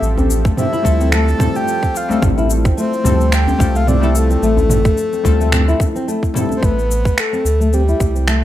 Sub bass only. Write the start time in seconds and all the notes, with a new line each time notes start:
0.02 A1
0.85 D2
2.22 A1
3.05 D2
3.60 C2
4.42 A1
5.25 D2
6.62 A1
7.45 D2
8.00 C2